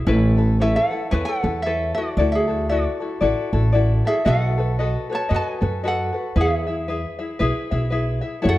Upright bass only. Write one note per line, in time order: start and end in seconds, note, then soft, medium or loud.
0.07 0.75 A1 loud
1.12 1.22 E2 medium
1.44 1.91 E2 medium
2.17 2.85 D2 loud
3.21 3.31 A1 medium
3.53 4.00 A1 medium
4.26 4.94 B1 loud
5.31 5.41 F#2 medium
5.62 6.09 F#2 medium
6.36 7.04 E2 loud
7.40 7.50 B1 medium
7.72 8.19 B1 medium
8.45 8.58 F#2 loud